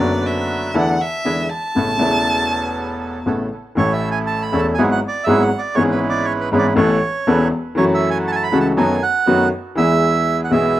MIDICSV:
0, 0, Header, 1, 5, 480
1, 0, Start_track
1, 0, Key_signature, 3, "major"
1, 0, Tempo, 500000
1, 1684, Time_signature, 4, 2, 24, 8
1, 10367, End_track
2, 0, Start_track
2, 0, Title_t, "Bandoneon"
2, 0, Program_c, 0, 23
2, 3623, Note_on_c, 0, 73, 93
2, 3772, Note_off_c, 0, 73, 0
2, 3775, Note_on_c, 0, 76, 88
2, 3928, Note_off_c, 0, 76, 0
2, 3949, Note_on_c, 0, 80, 95
2, 4020, Note_off_c, 0, 80, 0
2, 4098, Note_on_c, 0, 81, 108
2, 4246, Note_on_c, 0, 83, 102
2, 4250, Note_off_c, 0, 81, 0
2, 4399, Note_on_c, 0, 81, 84
2, 4421, Note_off_c, 0, 83, 0
2, 4477, Note_off_c, 0, 81, 0
2, 4554, Note_on_c, 0, 80, 93
2, 4633, Note_off_c, 0, 80, 0
2, 4723, Note_on_c, 0, 78, 97
2, 4800, Note_off_c, 0, 78, 0
2, 4877, Note_on_c, 0, 74, 98
2, 5032, Note_on_c, 0, 76, 102
2, 5041, Note_off_c, 0, 74, 0
2, 5205, Note_on_c, 0, 78, 92
2, 5216, Note_off_c, 0, 76, 0
2, 5362, Note_on_c, 0, 74, 86
2, 5382, Note_off_c, 0, 78, 0
2, 5518, Note_on_c, 0, 73, 105
2, 5523, Note_off_c, 0, 74, 0
2, 5597, Note_off_c, 0, 73, 0
2, 5677, Note_on_c, 0, 71, 84
2, 5756, Note_off_c, 0, 71, 0
2, 5852, Note_on_c, 0, 74, 94
2, 5996, Note_on_c, 0, 73, 92
2, 6008, Note_off_c, 0, 74, 0
2, 6075, Note_off_c, 0, 73, 0
2, 6151, Note_on_c, 0, 71, 83
2, 6231, Note_off_c, 0, 71, 0
2, 6320, Note_on_c, 0, 74, 82
2, 6398, Note_off_c, 0, 74, 0
2, 6498, Note_on_c, 0, 73, 84
2, 7180, Note_off_c, 0, 73, 0
2, 7460, Note_on_c, 0, 73, 96
2, 7532, Note_off_c, 0, 73, 0
2, 7627, Note_on_c, 0, 76, 90
2, 7771, Note_off_c, 0, 76, 0
2, 7781, Note_on_c, 0, 80, 99
2, 7852, Note_off_c, 0, 80, 0
2, 7945, Note_on_c, 0, 81, 109
2, 7979, Note_off_c, 0, 81, 0
2, 7989, Note_on_c, 0, 80, 104
2, 8022, Note_on_c, 0, 81, 105
2, 8023, Note_off_c, 0, 80, 0
2, 8094, Note_off_c, 0, 81, 0
2, 8094, Note_on_c, 0, 83, 102
2, 8244, Note_off_c, 0, 83, 0
2, 8259, Note_on_c, 0, 81, 87
2, 8330, Note_off_c, 0, 81, 0
2, 8424, Note_on_c, 0, 80, 93
2, 8666, Note_off_c, 0, 80, 0
2, 8668, Note_on_c, 0, 78, 101
2, 9106, Note_off_c, 0, 78, 0
2, 9384, Note_on_c, 0, 76, 115
2, 9992, Note_off_c, 0, 76, 0
2, 10027, Note_on_c, 0, 78, 74
2, 10093, Note_off_c, 0, 78, 0
2, 10099, Note_on_c, 0, 76, 96
2, 10367, Note_off_c, 0, 76, 0
2, 10367, End_track
3, 0, Start_track
3, 0, Title_t, "Violin"
3, 0, Program_c, 1, 40
3, 0, Note_on_c, 1, 74, 89
3, 250, Note_on_c, 1, 76, 81
3, 264, Note_off_c, 1, 74, 0
3, 725, Note_on_c, 1, 78, 93
3, 740, Note_off_c, 1, 76, 0
3, 975, Note_on_c, 1, 76, 102
3, 990, Note_off_c, 1, 78, 0
3, 1430, Note_on_c, 1, 81, 110
3, 1444, Note_off_c, 1, 76, 0
3, 3124, Note_off_c, 1, 81, 0
3, 10367, End_track
4, 0, Start_track
4, 0, Title_t, "Bandoneon"
4, 0, Program_c, 2, 23
4, 0, Note_on_c, 2, 62, 86
4, 1, Note_on_c, 2, 66, 76
4, 3, Note_on_c, 2, 71, 93
4, 684, Note_off_c, 2, 62, 0
4, 685, Note_off_c, 2, 66, 0
4, 686, Note_off_c, 2, 71, 0
4, 709, Note_on_c, 2, 64, 76
4, 713, Note_on_c, 2, 62, 78
4, 716, Note_on_c, 2, 69, 84
4, 918, Note_off_c, 2, 64, 0
4, 920, Note_off_c, 2, 62, 0
4, 921, Note_off_c, 2, 69, 0
4, 1198, Note_on_c, 2, 62, 50
4, 1200, Note_on_c, 2, 64, 54
4, 1201, Note_on_c, 2, 68, 57
4, 1402, Note_off_c, 2, 62, 0
4, 1403, Note_off_c, 2, 64, 0
4, 1404, Note_off_c, 2, 68, 0
4, 1683, Note_on_c, 2, 59, 51
4, 1683, Note_on_c, 2, 61, 47
4, 1688, Note_on_c, 2, 69, 56
4, 1885, Note_off_c, 2, 59, 0
4, 1885, Note_off_c, 2, 61, 0
4, 1887, Note_off_c, 2, 69, 0
4, 1918, Note_on_c, 2, 59, 78
4, 1918, Note_on_c, 2, 69, 83
4, 1919, Note_on_c, 2, 61, 74
4, 3067, Note_off_c, 2, 69, 0
4, 3068, Note_off_c, 2, 59, 0
4, 3068, Note_off_c, 2, 61, 0
4, 3129, Note_on_c, 2, 59, 52
4, 3132, Note_on_c, 2, 69, 56
4, 3133, Note_on_c, 2, 61, 49
4, 3335, Note_off_c, 2, 59, 0
4, 3337, Note_off_c, 2, 61, 0
4, 3337, Note_off_c, 2, 69, 0
4, 3617, Note_on_c, 2, 61, 68
4, 3617, Note_on_c, 2, 64, 68
4, 3618, Note_on_c, 2, 69, 89
4, 4308, Note_off_c, 2, 61, 0
4, 4308, Note_off_c, 2, 64, 0
4, 4309, Note_off_c, 2, 69, 0
4, 4340, Note_on_c, 2, 61, 85
4, 4341, Note_on_c, 2, 64, 74
4, 4342, Note_on_c, 2, 69, 88
4, 4545, Note_off_c, 2, 61, 0
4, 4546, Note_off_c, 2, 64, 0
4, 4547, Note_off_c, 2, 69, 0
4, 4588, Note_on_c, 2, 56, 76
4, 4590, Note_on_c, 2, 64, 81
4, 4591, Note_on_c, 2, 66, 71
4, 4592, Note_on_c, 2, 68, 85
4, 4790, Note_off_c, 2, 56, 0
4, 4791, Note_off_c, 2, 64, 0
4, 4791, Note_off_c, 2, 66, 0
4, 4792, Note_off_c, 2, 68, 0
4, 5066, Note_on_c, 2, 56, 82
4, 5070, Note_on_c, 2, 68, 87
4, 5071, Note_on_c, 2, 64, 73
4, 5073, Note_on_c, 2, 66, 77
4, 5269, Note_off_c, 2, 56, 0
4, 5271, Note_off_c, 2, 68, 0
4, 5272, Note_off_c, 2, 64, 0
4, 5273, Note_off_c, 2, 66, 0
4, 5547, Note_on_c, 2, 56, 83
4, 5550, Note_on_c, 2, 61, 74
4, 5550, Note_on_c, 2, 64, 74
4, 5552, Note_on_c, 2, 71, 95
4, 6231, Note_off_c, 2, 56, 0
4, 6233, Note_off_c, 2, 61, 0
4, 6233, Note_off_c, 2, 64, 0
4, 6233, Note_off_c, 2, 71, 0
4, 6262, Note_on_c, 2, 56, 81
4, 6264, Note_on_c, 2, 61, 83
4, 6264, Note_on_c, 2, 64, 78
4, 6264, Note_on_c, 2, 71, 100
4, 6466, Note_off_c, 2, 56, 0
4, 6467, Note_off_c, 2, 61, 0
4, 6467, Note_off_c, 2, 64, 0
4, 6467, Note_off_c, 2, 71, 0
4, 6502, Note_on_c, 2, 61, 92
4, 6506, Note_on_c, 2, 69, 83
4, 6508, Note_on_c, 2, 71, 83
4, 6705, Note_off_c, 2, 61, 0
4, 6707, Note_off_c, 2, 69, 0
4, 6708, Note_off_c, 2, 71, 0
4, 6979, Note_on_c, 2, 61, 91
4, 6982, Note_on_c, 2, 69, 80
4, 6982, Note_on_c, 2, 71, 97
4, 7182, Note_off_c, 2, 61, 0
4, 7183, Note_off_c, 2, 71, 0
4, 7184, Note_off_c, 2, 69, 0
4, 7451, Note_on_c, 2, 64, 84
4, 7454, Note_on_c, 2, 66, 72
4, 7455, Note_on_c, 2, 69, 97
4, 8135, Note_off_c, 2, 64, 0
4, 8137, Note_off_c, 2, 66, 0
4, 8137, Note_off_c, 2, 69, 0
4, 8170, Note_on_c, 2, 64, 80
4, 8175, Note_on_c, 2, 66, 73
4, 8176, Note_on_c, 2, 69, 94
4, 8374, Note_off_c, 2, 64, 0
4, 8376, Note_off_c, 2, 66, 0
4, 8377, Note_off_c, 2, 69, 0
4, 8408, Note_on_c, 2, 54, 75
4, 8410, Note_on_c, 2, 59, 76
4, 8413, Note_on_c, 2, 63, 78
4, 8413, Note_on_c, 2, 69, 84
4, 8612, Note_off_c, 2, 54, 0
4, 8614, Note_off_c, 2, 59, 0
4, 8615, Note_off_c, 2, 63, 0
4, 8615, Note_off_c, 2, 69, 0
4, 8888, Note_on_c, 2, 59, 84
4, 8889, Note_on_c, 2, 54, 89
4, 8889, Note_on_c, 2, 69, 97
4, 8891, Note_on_c, 2, 63, 76
4, 9091, Note_off_c, 2, 59, 0
4, 9092, Note_off_c, 2, 54, 0
4, 9092, Note_off_c, 2, 69, 0
4, 9093, Note_off_c, 2, 63, 0
4, 9371, Note_on_c, 2, 59, 78
4, 9374, Note_on_c, 2, 64, 69
4, 9377, Note_on_c, 2, 68, 78
4, 10055, Note_off_c, 2, 59, 0
4, 10057, Note_off_c, 2, 64, 0
4, 10058, Note_off_c, 2, 68, 0
4, 10094, Note_on_c, 2, 59, 80
4, 10094, Note_on_c, 2, 64, 75
4, 10100, Note_on_c, 2, 68, 88
4, 10367, Note_off_c, 2, 59, 0
4, 10367, Note_off_c, 2, 64, 0
4, 10367, Note_off_c, 2, 68, 0
4, 10367, End_track
5, 0, Start_track
5, 0, Title_t, "Upright piano"
5, 0, Program_c, 3, 0
5, 0, Note_on_c, 3, 30, 83
5, 0, Note_on_c, 3, 42, 82
5, 0, Note_on_c, 3, 50, 71
5, 0, Note_on_c, 3, 54, 61
5, 0, Note_on_c, 3, 59, 70
5, 4, Note_on_c, 3, 66, 88
5, 667, Note_off_c, 3, 50, 0
5, 675, Note_off_c, 3, 54, 0
5, 676, Note_off_c, 3, 42, 0
5, 677, Note_off_c, 3, 30, 0
5, 681, Note_off_c, 3, 59, 0
5, 687, Note_off_c, 3, 66, 0
5, 711, Note_on_c, 3, 40, 90
5, 712, Note_on_c, 3, 50, 74
5, 714, Note_on_c, 3, 52, 83
5, 715, Note_on_c, 3, 57, 66
5, 717, Note_on_c, 3, 59, 67
5, 719, Note_on_c, 3, 64, 83
5, 919, Note_off_c, 3, 40, 0
5, 919, Note_off_c, 3, 50, 0
5, 920, Note_off_c, 3, 52, 0
5, 921, Note_off_c, 3, 57, 0
5, 922, Note_off_c, 3, 59, 0
5, 923, Note_off_c, 3, 64, 0
5, 1197, Note_on_c, 3, 40, 53
5, 1198, Note_on_c, 3, 50, 53
5, 1199, Note_on_c, 3, 56, 47
5, 1202, Note_on_c, 3, 59, 49
5, 1203, Note_on_c, 3, 64, 52
5, 1206, Note_on_c, 3, 52, 56
5, 1402, Note_off_c, 3, 40, 0
5, 1402, Note_off_c, 3, 50, 0
5, 1403, Note_off_c, 3, 56, 0
5, 1404, Note_off_c, 3, 59, 0
5, 1405, Note_off_c, 3, 64, 0
5, 1406, Note_off_c, 3, 52, 0
5, 1679, Note_on_c, 3, 49, 43
5, 1685, Note_on_c, 3, 57, 41
5, 1686, Note_on_c, 3, 59, 42
5, 1688, Note_on_c, 3, 45, 50
5, 1693, Note_on_c, 3, 33, 55
5, 1693, Note_on_c, 3, 64, 51
5, 1881, Note_off_c, 3, 49, 0
5, 1886, Note_off_c, 3, 57, 0
5, 1886, Note_off_c, 3, 59, 0
5, 1887, Note_off_c, 3, 45, 0
5, 1890, Note_off_c, 3, 33, 0
5, 1890, Note_off_c, 3, 64, 0
5, 1895, Note_on_c, 3, 49, 68
5, 1907, Note_on_c, 3, 57, 60
5, 1911, Note_on_c, 3, 40, 90
5, 1912, Note_on_c, 3, 28, 86
5, 1921, Note_on_c, 3, 59, 71
5, 1932, Note_on_c, 3, 64, 74
5, 3056, Note_off_c, 3, 49, 0
5, 3062, Note_off_c, 3, 57, 0
5, 3064, Note_off_c, 3, 28, 0
5, 3064, Note_off_c, 3, 40, 0
5, 3069, Note_off_c, 3, 59, 0
5, 3074, Note_off_c, 3, 64, 0
5, 3130, Note_on_c, 3, 33, 56
5, 3131, Note_on_c, 3, 45, 57
5, 3131, Note_on_c, 3, 57, 45
5, 3131, Note_on_c, 3, 64, 49
5, 3134, Note_on_c, 3, 49, 47
5, 3135, Note_on_c, 3, 59, 46
5, 3336, Note_off_c, 3, 33, 0
5, 3336, Note_off_c, 3, 45, 0
5, 3336, Note_off_c, 3, 57, 0
5, 3336, Note_off_c, 3, 64, 0
5, 3338, Note_off_c, 3, 49, 0
5, 3338, Note_off_c, 3, 59, 0
5, 3603, Note_on_c, 3, 52, 70
5, 3616, Note_on_c, 3, 57, 67
5, 3619, Note_on_c, 3, 33, 80
5, 3624, Note_on_c, 3, 45, 83
5, 3626, Note_on_c, 3, 61, 63
5, 3639, Note_on_c, 3, 69, 79
5, 4301, Note_off_c, 3, 52, 0
5, 4308, Note_off_c, 3, 57, 0
5, 4310, Note_off_c, 3, 33, 0
5, 4312, Note_off_c, 3, 45, 0
5, 4313, Note_off_c, 3, 61, 0
5, 4319, Note_off_c, 3, 69, 0
5, 4339, Note_on_c, 3, 52, 69
5, 4343, Note_on_c, 3, 40, 77
5, 4344, Note_on_c, 3, 57, 62
5, 4348, Note_on_c, 3, 28, 79
5, 4348, Note_on_c, 3, 61, 66
5, 4349, Note_on_c, 3, 69, 82
5, 4545, Note_off_c, 3, 52, 0
5, 4547, Note_off_c, 3, 40, 0
5, 4548, Note_off_c, 3, 57, 0
5, 4549, Note_off_c, 3, 28, 0
5, 4550, Note_off_c, 3, 61, 0
5, 4550, Note_off_c, 3, 69, 0
5, 4592, Note_on_c, 3, 44, 87
5, 4593, Note_on_c, 3, 54, 66
5, 4594, Note_on_c, 3, 32, 85
5, 4594, Note_on_c, 3, 64, 71
5, 4595, Note_on_c, 3, 59, 65
5, 4596, Note_on_c, 3, 68, 78
5, 4792, Note_off_c, 3, 44, 0
5, 4792, Note_off_c, 3, 54, 0
5, 4793, Note_off_c, 3, 32, 0
5, 4793, Note_off_c, 3, 59, 0
5, 4793, Note_off_c, 3, 64, 0
5, 4794, Note_off_c, 3, 68, 0
5, 5055, Note_on_c, 3, 44, 96
5, 5059, Note_on_c, 3, 54, 75
5, 5060, Note_on_c, 3, 32, 92
5, 5060, Note_on_c, 3, 68, 86
5, 5061, Note_on_c, 3, 59, 72
5, 5065, Note_on_c, 3, 64, 71
5, 5266, Note_off_c, 3, 54, 0
5, 5266, Note_off_c, 3, 68, 0
5, 5267, Note_off_c, 3, 32, 0
5, 5267, Note_off_c, 3, 59, 0
5, 5268, Note_off_c, 3, 44, 0
5, 5269, Note_off_c, 3, 64, 0
5, 5521, Note_on_c, 3, 44, 79
5, 5527, Note_on_c, 3, 52, 72
5, 5535, Note_off_c, 3, 44, 0
5, 5538, Note_on_c, 3, 59, 75
5, 5541, Note_on_c, 3, 44, 87
5, 5543, Note_on_c, 3, 32, 85
5, 5553, Note_on_c, 3, 61, 69
5, 5562, Note_on_c, 3, 68, 85
5, 6221, Note_off_c, 3, 52, 0
5, 6227, Note_off_c, 3, 59, 0
5, 6228, Note_off_c, 3, 44, 0
5, 6229, Note_off_c, 3, 32, 0
5, 6234, Note_off_c, 3, 61, 0
5, 6239, Note_off_c, 3, 68, 0
5, 6257, Note_on_c, 3, 44, 89
5, 6259, Note_on_c, 3, 52, 63
5, 6261, Note_on_c, 3, 32, 83
5, 6264, Note_on_c, 3, 61, 67
5, 6265, Note_on_c, 3, 59, 63
5, 6267, Note_on_c, 3, 68, 72
5, 6465, Note_off_c, 3, 32, 0
5, 6465, Note_off_c, 3, 52, 0
5, 6466, Note_off_c, 3, 44, 0
5, 6467, Note_off_c, 3, 61, 0
5, 6468, Note_off_c, 3, 59, 0
5, 6468, Note_off_c, 3, 68, 0
5, 6487, Note_on_c, 3, 45, 91
5, 6487, Note_on_c, 3, 52, 81
5, 6489, Note_on_c, 3, 59, 70
5, 6494, Note_on_c, 3, 69, 90
5, 6495, Note_on_c, 3, 61, 68
5, 6496, Note_on_c, 3, 33, 101
5, 6698, Note_off_c, 3, 45, 0
5, 6698, Note_off_c, 3, 52, 0
5, 6699, Note_off_c, 3, 59, 0
5, 6701, Note_off_c, 3, 69, 0
5, 6702, Note_off_c, 3, 33, 0
5, 6702, Note_off_c, 3, 61, 0
5, 6981, Note_on_c, 3, 28, 94
5, 6983, Note_on_c, 3, 40, 94
5, 6983, Note_on_c, 3, 59, 72
5, 6984, Note_on_c, 3, 52, 84
5, 6984, Note_on_c, 3, 69, 84
5, 6987, Note_on_c, 3, 61, 73
5, 7183, Note_off_c, 3, 28, 0
5, 7184, Note_off_c, 3, 40, 0
5, 7184, Note_off_c, 3, 59, 0
5, 7184, Note_off_c, 3, 69, 0
5, 7185, Note_off_c, 3, 52, 0
5, 7186, Note_off_c, 3, 61, 0
5, 7440, Note_on_c, 3, 52, 77
5, 7452, Note_on_c, 3, 57, 73
5, 7463, Note_on_c, 3, 54, 99
5, 7465, Note_on_c, 3, 42, 90
5, 7465, Note_on_c, 3, 61, 68
5, 7486, Note_on_c, 3, 66, 88
5, 8130, Note_off_c, 3, 52, 0
5, 8136, Note_off_c, 3, 57, 0
5, 8141, Note_off_c, 3, 54, 0
5, 8142, Note_off_c, 3, 42, 0
5, 8143, Note_off_c, 3, 61, 0
5, 8153, Note_off_c, 3, 66, 0
5, 8177, Note_on_c, 3, 52, 71
5, 8179, Note_on_c, 3, 57, 69
5, 8183, Note_on_c, 3, 49, 86
5, 8187, Note_on_c, 3, 37, 85
5, 8189, Note_on_c, 3, 61, 64
5, 8189, Note_on_c, 3, 66, 76
5, 8377, Note_off_c, 3, 52, 0
5, 8378, Note_off_c, 3, 57, 0
5, 8381, Note_off_c, 3, 49, 0
5, 8382, Note_off_c, 3, 37, 0
5, 8383, Note_off_c, 3, 61, 0
5, 8383, Note_off_c, 3, 66, 0
5, 8420, Note_on_c, 3, 42, 93
5, 8421, Note_on_c, 3, 57, 71
5, 8424, Note_on_c, 3, 54, 92
5, 8425, Note_on_c, 3, 51, 71
5, 8425, Note_on_c, 3, 66, 84
5, 8429, Note_on_c, 3, 59, 70
5, 8618, Note_off_c, 3, 42, 0
5, 8619, Note_off_c, 3, 57, 0
5, 8620, Note_off_c, 3, 54, 0
5, 8621, Note_off_c, 3, 51, 0
5, 8621, Note_off_c, 3, 66, 0
5, 8623, Note_off_c, 3, 59, 0
5, 8899, Note_on_c, 3, 57, 68
5, 8900, Note_on_c, 3, 54, 90
5, 8901, Note_on_c, 3, 51, 73
5, 8902, Note_on_c, 3, 42, 98
5, 8905, Note_on_c, 3, 59, 75
5, 8905, Note_on_c, 3, 66, 89
5, 9097, Note_off_c, 3, 54, 0
5, 9097, Note_off_c, 3, 57, 0
5, 9098, Note_off_c, 3, 42, 0
5, 9098, Note_off_c, 3, 51, 0
5, 9100, Note_off_c, 3, 59, 0
5, 9100, Note_off_c, 3, 66, 0
5, 9364, Note_on_c, 3, 52, 78
5, 9376, Note_on_c, 3, 56, 71
5, 9379, Note_off_c, 3, 52, 0
5, 9384, Note_on_c, 3, 40, 85
5, 9388, Note_on_c, 3, 52, 87
5, 9391, Note_on_c, 3, 59, 65
5, 9405, Note_on_c, 3, 68, 77
5, 10058, Note_off_c, 3, 52, 0
5, 10058, Note_off_c, 3, 56, 0
5, 10062, Note_off_c, 3, 40, 0
5, 10065, Note_off_c, 3, 59, 0
5, 10072, Note_off_c, 3, 68, 0
5, 10072, Note_on_c, 3, 52, 61
5, 10089, Note_on_c, 3, 35, 83
5, 10092, Note_on_c, 3, 56, 64
5, 10094, Note_on_c, 3, 47, 72
5, 10100, Note_on_c, 3, 59, 57
5, 10114, Note_on_c, 3, 68, 74
5, 10367, Note_off_c, 3, 35, 0
5, 10367, Note_off_c, 3, 47, 0
5, 10367, Note_off_c, 3, 52, 0
5, 10367, Note_off_c, 3, 56, 0
5, 10367, Note_off_c, 3, 59, 0
5, 10367, Note_off_c, 3, 68, 0
5, 10367, End_track
0, 0, End_of_file